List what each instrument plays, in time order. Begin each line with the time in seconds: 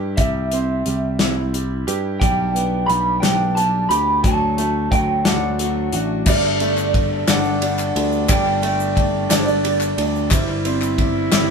Already playing: picked electric bass G2, upright piano G3 E4 G4
0.17 picked electric bass C2, upright piano G3, clean electric guitar E5, kick, closed hi-hat
0.52 upright piano C4, closed hi-hat
0.86 picked electric bass C2, upright piano G3, closed hi-hat
1.19 picked electric bass C2, upright piano E4, snare, closed hi-hat
1.53 upright piano G3, closed hi-hat
1.87 picked electric bass G2, upright piano G4, closed hi-hat
2.20 picked electric bass B1, steel-string acoustic guitar B2 G3 B3 D4 G4, upright piano G3, clean electric guitar G5, kick, closed hi-hat
2.54 upright piano B3, steel-string acoustic guitar B3 D4 G4, closed hi-hat
2.86 picked electric bass B1, upright piano G3, steel-string acoustic guitar G3 B3 D4, clean electric guitar B5, closed hi-hat
2.91 steel-string acoustic guitar G4
3.20 picked electric bass B1, steel-string acoustic guitar B2 G3 B3 D4 G4, upright piano D4, clean electric guitar G5, snare, closed hi-hat
3.55 upright piano G3, steel-string acoustic guitar G3 B3 D4 G4, clean electric guitar A5, closed hi-hat
3.89 picked electric bass D2, steel-string acoustic guitar B3 D4 G4, upright piano G4, clean electric guitar B5, closed hi-hat
4.23 picked electric bass D2, steel-string acoustic guitar D3 F#3 A3 D4 F#4, upright piano F#3, clean electric guitar A5, kick, closed hi-hat
4.57 upright piano A3, steel-string acoustic guitar A3 D4 F#4, closed hi-hat
4.91 picked electric bass D2, upright piano F#3, steel-string acoustic guitar F#3 A3 D4, clean electric guitar G5, kick, closed hi-hat
5.25 picked electric bass D2, steel-string acoustic guitar D3 F#3 A3 D4 F#4, upright piano D4, clean electric guitar F#5, snare, closed hi-hat
5.59 steel-string acoustic guitar F#3 A3 D4 F#4, upright piano F#3, closed hi-hat
5.92 picked electric bass A1, steel-string acoustic guitar A3 D4 F#4, upright piano F#4, closed hi-hat
6.26 picked electric bass G1, felt piano G1 G2 G3 D4 A4 D5, steel-string acoustic guitar G3 A3 D4 G4, upright piano G3, french horn D4, clean electric guitar D5, kick, clap, crash, shaker
6.44 clap
6.59 felt piano G3 D4 A4 D5, upright piano A3, ride, shaker
6.77 clap, shaker
6.94 steel-string acoustic guitar G3 A3 D4 G4, felt piano G3 D4 A4 D5, kick, clap, ride
7.28 picked electric bass G1, felt piano G3 D4 A4 D5, steel-string acoustic guitar G3 A3 D4 G4, upright piano D4, clean electric guitar F#5, snare, clap, ride, shaker
7.45 shaker
7.62 felt piano G3 D4 A4 D5, upright piano G3, clap, ride
7.78 clap, shaker
7.95 picked electric bass D2, felt piano G3 D4 A4 D5, steel-string acoustic guitar A3 D4 G4, ride
8.12 shaker
8.28 picked electric bass G1, felt piano G1 G2 G3 D4 A4 D5, upright piano G3, steel-string acoustic guitar G3 A3 D4 G4, clean electric guitar G5, kick, clap, ride, shaker
8.46 clap
8.62 felt piano G3 D4 A4 D5, upright piano A3, ride, shaker
8.80 shaker
8.96 felt piano G3 D4 A4 D5, steel-string acoustic guitar G3 A3 D4 G4, kick, clap, ride
9.29 picked electric bass G1, felt piano G3 D4 A4 D5, steel-string acoustic guitar G3 A3 D4 G4, upright piano D4, clean electric guitar D5, snare, clap, ride, shaker
9.37 clean electric guitar C5
9.46 clean electric guitar D5, shaker
9.64 upright piano G3, felt piano G3 D4 A4 D5, clap, ride
9.81 clap, shaker
9.98 picked electric bass D2, felt piano G3 D4 A4 D5, steel-string acoustic guitar A3 D4 G4, ride
10.16 shaker
10.31 picked electric bass G1, felt piano G1 G2 G3 E4 C5 E5, steel-string acoustic guitar G3 C4 E4 G4, upright piano G3, french horn E4, kick, clap, ride, shaker
10.48 clap
10.65 felt piano G3 E4 C5 E5, upright piano C4, ride, shaker
10.82 clap, shaker
10.98 felt piano G3 E4 C5 E5, steel-string acoustic guitar G3 C4 E4 G4, kick, clap, ride
11.31 picked electric bass G1, felt piano G3 E4 C5 E5, steel-string acoustic guitar G3 C4 E4 G4, upright piano E4, snare, clap, ride, shaker